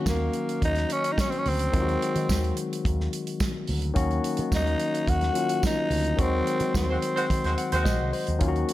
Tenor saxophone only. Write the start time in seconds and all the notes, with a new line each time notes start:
0.09 A#3
0.65 D#4
0.92 C#4
1.12 D#4
1.20 C#4
1.30 C4
1.39 C#4
1.48 C4
4.55 D#4
5.09 F#4
5.66 D#4
6.21 C4
6.77 C4